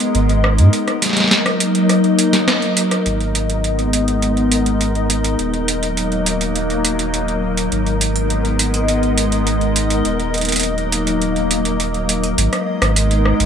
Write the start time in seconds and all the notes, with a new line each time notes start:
Already playing: G#3 B3 D#4 A#4 D#5
0.00 closed hi-hat
0.15 G#1, closed hi-hat
0.29 closed hi-hat
0.44 cross-stick
0.58 G#2, closed hi-hat
0.73 F#3 A#3 D#4 D#5, closed hi-hat
0.88 cross-stick, closed hi-hat
1.02 snare, closed hi-hat
1.06 snare
1.09 snare
1.13 snare
1.17 snare, closed hi-hat
1.20 snare
1.24 snare
1.28 snare
1.31 snare, closed hi-hat
1.46 cross-stick, closed hi-hat
1.60 closed hi-hat
1.75 closed hi-hat
1.89 cross-stick, closed hi-hat
2.04 closed hi-hat
2.19 closed hi-hat
2.33 snare, closed hi-hat
2.48 cross-stick, snare, closed hi-hat
2.62 closed hi-hat
2.77 closed hi-hat
2.91 cross-stick, closed hi-hat
3.06 G#1 G#3 B3 D#4 A#4 D#5, closed hi-hat
3.21 closed hi-hat
3.35 closed hi-hat
3.50 closed hi-hat
3.64 closed hi-hat
3.79 closed hi-hat
3.93 closed hi-hat
4.08 closed hi-hat
4.22 closed hi-hat
4.37 closed hi-hat
4.52 closed hi-hat
4.66 closed hi-hat
4.81 closed hi-hat
4.95 closed hi-hat
5.10 closed hi-hat
5.24 closed hi-hat
5.39 D#1 F#3 A#3, closed hi-hat
5.54 closed hi-hat
5.68 closed hi-hat
5.83 closed hi-hat
5.97 closed hi-hat
6.12 closed hi-hat
6.26 closed hi-hat
6.41 closed hi-hat
6.56 closed hi-hat
6.70 closed hi-hat
6.85 closed hi-hat
6.99 closed hi-hat
7.14 closed hi-hat
7.28 closed hi-hat
7.57 closed hi-hat
7.72 G#1 G#3 B3 D#5, closed hi-hat
7.86 closed hi-hat
8.01 closed hi-hat
8.16 closed hi-hat
8.30 closed hi-hat
8.45 closed hi-hat
8.59 closed hi-hat
8.74 closed hi-hat
8.88 closed hi-hat
9.03 closed hi-hat
9.18 closed hi-hat
9.32 closed hi-hat
9.47 closed hi-hat
9.61 closed hi-hat
9.76 closed hi-hat
9.90 closed hi-hat
10.05 D#1 F#3 A#3, closed hi-hat
10.20 closed hi-hat
10.34 closed hi-hat
10.38 closed hi-hat
10.41 closed hi-hat
10.45 closed hi-hat
10.49 closed hi-hat
10.52 closed hi-hat
10.56 closed hi-hat
10.60 closed hi-hat
10.63 closed hi-hat
10.78 closed hi-hat
10.92 closed hi-hat
11.07 closed hi-hat
11.22 closed hi-hat
11.36 closed hi-hat
11.51 closed hi-hat
11.65 closed hi-hat
11.80 closed hi-hat
11.94 closed hi-hat
12.09 closed hi-hat
12.24 closed hi-hat
12.38 G#1 G#3 B3 D#4 A#4 D#5, closed hi-hat
12.53 cross-stick, closed hi-hat
12.82 G#1, cross-stick, closed hi-hat
12.96 closed hi-hat
13.11 closed hi-hat
13.25 cross-stick
13.40 G#1, closed hi-hat